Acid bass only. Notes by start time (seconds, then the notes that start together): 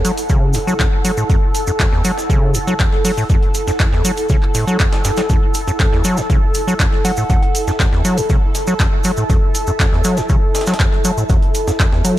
0.05 F#3
0.30 C#3
0.55 F#2
0.67 F#3
0.80 F#2
1.05 F#3
1.18 A2
1.30 F#2
1.68 F#2
1.80 F#2
1.93 E2
2.05 F#3
2.30 C#3
2.55 F#2
2.67 F#3
2.80 F#2
3.05 F#3
3.18 A2
3.30 F#2
3.67 F#2
3.80 F#2
3.93 E2
4.05 F#3
4.30 C#3
4.55 A2
4.67 F#3
4.80 F#2
5.05 G2
5.18 F#3
5.30 F#2
5.68 F#2
5.80 F#2
5.93 E2
6.05 F#3
6.18 F#2
6.30 C#3
6.67 F#3
6.80 F#2
7.05 F#3
7.18 A2
7.30 F#2
7.68 F#2
7.80 F#2
7.93 E2
8.05 F#3
8.18 F#2
8.30 C#3
8.68 F#3
8.80 F#2
9.05 F#3
9.18 A2
9.30 F#2
9.68 F#2
9.80 F#2
9.93 E2
10.05 F#3
10.18 F#2
10.30 C#3
10.67 F#3
10.80 F#2
11.05 F#3
11.18 A2
11.30 F#2
11.68 F#2
11.80 F#2
11.93 E2
12.05 F#3